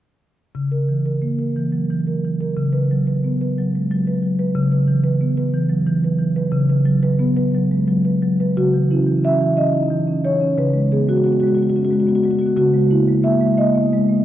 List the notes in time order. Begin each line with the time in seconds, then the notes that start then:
0.55 C#3
0.71 A#4
0.89 E3
1.06 A#4
1.22 A#3
1.39 A#4
1.56 E3
1.72 F#3
1.90 E3
2.07 A#4
2.25 E3
2.41 A#4
2.57 C#3
2.73 B4
2.91 F#3
3.07 B4
3.24 B3
3.41 B4
3.58 F#3
3.75 G#3
3.91 F#3
4.07 B4
4.22 F#3
4.39 B4
4.55 C#3
4.72 B4
4.88 E3
5.04 B4
5.21 B3
5.37 B4
5.54 E3
5.69 F#3
5.87 E3
6.04 B4
6.19 E3
6.36 B4
6.52 C#3
6.69 B4
6.85 F#3
7.03 B4
7.19 B3
7.37 B4
7.55 F#3
7.71 G#3
7.88 F#3
8.05 B4
8.22 F#3
8.40 B4
8.57 C#3 F#4
8.74 E3
8.91 C#4 E4
9.07 E3
9.24 C#4 E5
9.41 E3
9.57 C#4 D#5
9.74 D#4
9.90 E3
10.07 C#4
10.24 E3 C#5
10.41 C#4
10.57 C#3 B4
10.74 G#3
10.92 B3 G#4
11.08 G#3 F#4
11.17 F#4
11.24 B3 F#4
11.32 F#4
11.40 G#3 F#4
11.47 F#4
11.55 B3 F#4
11.62 F#4
11.70 F#4
11.76 C#4 F#4
11.85 F#4
11.91 G#3 F#4
12.00 F#4
12.07 B3 F#4
12.15 F#4
12.23 G#3 F#4
12.31 F#4
12.39 B3 F#4
12.46 F#4
12.56 C#3 F#4
12.74 G#3
12.90 A#3 E4
13.08 G#3
13.23 A#3 E5
13.41 G#3
13.57 A#3 D#5
13.75 B3
13.93 G#3
14.09 A#3